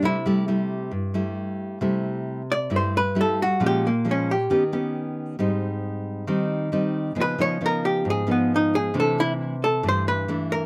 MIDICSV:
0, 0, Header, 1, 3, 480
1, 0, Start_track
1, 0, Tempo, 445434
1, 37, Time_signature, 4, 2, 24, 8
1, 11486, End_track
2, 0, Start_track
2, 0, Title_t, "Hollow-body jazz guitar"
2, 0, Program_c, 0, 26
2, 57, Note_on_c, 0, 64, 71
2, 1444, Note_off_c, 0, 64, 0
2, 2711, Note_on_c, 0, 74, 76
2, 2927, Note_off_c, 0, 74, 0
2, 2976, Note_on_c, 0, 72, 63
2, 3180, Note_off_c, 0, 72, 0
2, 3201, Note_on_c, 0, 71, 77
2, 3412, Note_off_c, 0, 71, 0
2, 3456, Note_on_c, 0, 69, 70
2, 3660, Note_off_c, 0, 69, 0
2, 3689, Note_on_c, 0, 66, 73
2, 3897, Note_off_c, 0, 66, 0
2, 3948, Note_on_c, 0, 67, 74
2, 4147, Note_off_c, 0, 67, 0
2, 4167, Note_on_c, 0, 58, 39
2, 4376, Note_off_c, 0, 58, 0
2, 4430, Note_on_c, 0, 61, 58
2, 4627, Note_off_c, 0, 61, 0
2, 4648, Note_on_c, 0, 67, 67
2, 5071, Note_off_c, 0, 67, 0
2, 7774, Note_on_c, 0, 71, 68
2, 7980, Note_off_c, 0, 71, 0
2, 7990, Note_on_c, 0, 73, 78
2, 8207, Note_off_c, 0, 73, 0
2, 8251, Note_on_c, 0, 70, 74
2, 8458, Note_off_c, 0, 70, 0
2, 8460, Note_on_c, 0, 67, 68
2, 8682, Note_off_c, 0, 67, 0
2, 8731, Note_on_c, 0, 68, 65
2, 8938, Note_off_c, 0, 68, 0
2, 8959, Note_on_c, 0, 59, 38
2, 9172, Note_off_c, 0, 59, 0
2, 9221, Note_on_c, 0, 63, 68
2, 9424, Note_off_c, 0, 63, 0
2, 9431, Note_on_c, 0, 68, 80
2, 9648, Note_off_c, 0, 68, 0
2, 9696, Note_on_c, 0, 69, 74
2, 9901, Note_off_c, 0, 69, 0
2, 9914, Note_on_c, 0, 64, 79
2, 10048, Note_off_c, 0, 64, 0
2, 10387, Note_on_c, 0, 69, 73
2, 10606, Note_off_c, 0, 69, 0
2, 10652, Note_on_c, 0, 72, 76
2, 10859, Note_off_c, 0, 72, 0
2, 10863, Note_on_c, 0, 71, 73
2, 11299, Note_off_c, 0, 71, 0
2, 11337, Note_on_c, 0, 70, 78
2, 11486, Note_off_c, 0, 70, 0
2, 11486, End_track
3, 0, Start_track
3, 0, Title_t, "Nylon-string guitar"
3, 0, Program_c, 1, 24
3, 25, Note_on_c, 1, 48, 64
3, 27, Note_on_c, 1, 55, 54
3, 33, Note_on_c, 1, 57, 51
3, 38, Note_on_c, 1, 64, 58
3, 172, Note_off_c, 1, 55, 0
3, 176, Note_off_c, 1, 57, 0
3, 179, Note_off_c, 1, 64, 0
3, 278, Note_on_c, 1, 55, 61
3, 287, Note_on_c, 1, 57, 52
3, 291, Note_on_c, 1, 64, 59
3, 479, Note_off_c, 1, 55, 0
3, 483, Note_off_c, 1, 57, 0
3, 486, Note_off_c, 1, 64, 0
3, 516, Note_on_c, 1, 55, 49
3, 521, Note_on_c, 1, 57, 46
3, 524, Note_on_c, 1, 64, 49
3, 968, Note_off_c, 1, 48, 0
3, 986, Note_on_c, 1, 43, 55
3, 994, Note_off_c, 1, 55, 0
3, 996, Note_off_c, 1, 57, 0
3, 998, Note_off_c, 1, 64, 0
3, 1230, Note_on_c, 1, 55, 53
3, 1236, Note_on_c, 1, 57, 55
3, 1241, Note_on_c, 1, 64, 62
3, 1915, Note_off_c, 1, 55, 0
3, 1918, Note_off_c, 1, 57, 0
3, 1921, Note_off_c, 1, 64, 0
3, 1928, Note_off_c, 1, 43, 0
3, 1949, Note_on_c, 1, 48, 61
3, 1952, Note_on_c, 1, 55, 48
3, 1958, Note_on_c, 1, 64, 52
3, 1961, Note_on_c, 1, 57, 51
3, 2599, Note_off_c, 1, 55, 0
3, 2601, Note_off_c, 1, 57, 0
3, 2603, Note_off_c, 1, 64, 0
3, 2891, Note_off_c, 1, 48, 0
3, 2909, Note_on_c, 1, 43, 64
3, 2915, Note_on_c, 1, 55, 43
3, 2918, Note_on_c, 1, 57, 44
3, 2923, Note_on_c, 1, 64, 58
3, 3224, Note_off_c, 1, 55, 0
3, 3226, Note_off_c, 1, 57, 0
3, 3229, Note_off_c, 1, 64, 0
3, 3396, Note_on_c, 1, 55, 51
3, 3407, Note_on_c, 1, 57, 52
3, 3409, Note_on_c, 1, 64, 61
3, 3706, Note_off_c, 1, 55, 0
3, 3712, Note_off_c, 1, 57, 0
3, 3712, Note_off_c, 1, 64, 0
3, 3850, Note_off_c, 1, 43, 0
3, 3879, Note_on_c, 1, 46, 60
3, 3882, Note_on_c, 1, 53, 51
3, 3885, Note_on_c, 1, 56, 52
3, 3892, Note_on_c, 1, 61, 60
3, 4188, Note_off_c, 1, 53, 0
3, 4190, Note_off_c, 1, 56, 0
3, 4192, Note_off_c, 1, 61, 0
3, 4362, Note_on_c, 1, 53, 46
3, 4368, Note_on_c, 1, 56, 51
3, 4376, Note_on_c, 1, 61, 49
3, 4682, Note_off_c, 1, 53, 0
3, 4686, Note_off_c, 1, 56, 0
3, 4688, Note_off_c, 1, 61, 0
3, 4814, Note_off_c, 1, 46, 0
3, 4850, Note_on_c, 1, 51, 66
3, 4857, Note_on_c, 1, 59, 56
3, 4857, Note_on_c, 1, 67, 60
3, 4859, Note_on_c, 1, 61, 46
3, 4987, Note_off_c, 1, 59, 0
3, 4987, Note_off_c, 1, 61, 0
3, 4988, Note_off_c, 1, 67, 0
3, 5092, Note_on_c, 1, 59, 48
3, 5096, Note_on_c, 1, 61, 56
3, 5098, Note_on_c, 1, 67, 58
3, 5766, Note_off_c, 1, 59, 0
3, 5768, Note_off_c, 1, 61, 0
3, 5769, Note_off_c, 1, 67, 0
3, 5781, Note_off_c, 1, 51, 0
3, 5806, Note_on_c, 1, 55, 51
3, 5812, Note_on_c, 1, 44, 58
3, 5816, Note_on_c, 1, 60, 48
3, 5820, Note_on_c, 1, 63, 60
3, 6723, Note_off_c, 1, 55, 0
3, 6729, Note_off_c, 1, 60, 0
3, 6730, Note_off_c, 1, 63, 0
3, 6741, Note_off_c, 1, 44, 0
3, 6761, Note_on_c, 1, 51, 64
3, 6766, Note_on_c, 1, 55, 49
3, 6766, Note_on_c, 1, 60, 49
3, 6769, Note_on_c, 1, 63, 56
3, 7202, Note_off_c, 1, 55, 0
3, 7204, Note_off_c, 1, 60, 0
3, 7204, Note_off_c, 1, 63, 0
3, 7241, Note_on_c, 1, 55, 50
3, 7249, Note_on_c, 1, 60, 57
3, 7251, Note_on_c, 1, 63, 53
3, 7681, Note_off_c, 1, 55, 0
3, 7685, Note_off_c, 1, 63, 0
3, 7686, Note_off_c, 1, 60, 0
3, 7696, Note_off_c, 1, 51, 0
3, 7706, Note_on_c, 1, 49, 61
3, 7714, Note_on_c, 1, 53, 49
3, 7718, Note_on_c, 1, 59, 53
3, 7719, Note_on_c, 1, 63, 55
3, 7916, Note_off_c, 1, 59, 0
3, 7917, Note_off_c, 1, 53, 0
3, 7920, Note_off_c, 1, 63, 0
3, 7957, Note_on_c, 1, 53, 50
3, 7961, Note_on_c, 1, 59, 56
3, 7967, Note_on_c, 1, 63, 55
3, 8159, Note_off_c, 1, 53, 0
3, 8161, Note_off_c, 1, 59, 0
3, 8163, Note_off_c, 1, 63, 0
3, 8197, Note_on_c, 1, 53, 47
3, 8204, Note_on_c, 1, 59, 47
3, 8207, Note_on_c, 1, 63, 54
3, 8650, Note_off_c, 1, 49, 0
3, 8676, Note_on_c, 1, 44, 62
3, 8880, Note_off_c, 1, 53, 0
3, 8881, Note_off_c, 1, 59, 0
3, 8884, Note_off_c, 1, 63, 0
3, 8909, Note_on_c, 1, 53, 51
3, 8914, Note_on_c, 1, 59, 54
3, 8920, Note_on_c, 1, 63, 54
3, 9596, Note_off_c, 1, 53, 0
3, 9598, Note_off_c, 1, 59, 0
3, 9601, Note_off_c, 1, 63, 0
3, 9613, Note_off_c, 1, 44, 0
3, 9633, Note_on_c, 1, 48, 62
3, 9637, Note_on_c, 1, 52, 55
3, 9638, Note_on_c, 1, 57, 47
3, 9645, Note_on_c, 1, 62, 53
3, 10282, Note_off_c, 1, 57, 0
3, 10283, Note_off_c, 1, 52, 0
3, 10287, Note_off_c, 1, 62, 0
3, 10573, Note_off_c, 1, 48, 0
3, 10595, Note_on_c, 1, 43, 61
3, 10595, Note_on_c, 1, 52, 46
3, 10599, Note_on_c, 1, 57, 50
3, 10601, Note_on_c, 1, 62, 50
3, 11039, Note_off_c, 1, 52, 0
3, 11040, Note_off_c, 1, 57, 0
3, 11042, Note_off_c, 1, 62, 0
3, 11082, Note_on_c, 1, 52, 54
3, 11088, Note_on_c, 1, 57, 53
3, 11092, Note_on_c, 1, 62, 55
3, 11486, Note_off_c, 1, 43, 0
3, 11486, Note_off_c, 1, 52, 0
3, 11486, Note_off_c, 1, 57, 0
3, 11486, Note_off_c, 1, 62, 0
3, 11486, End_track
0, 0, End_of_file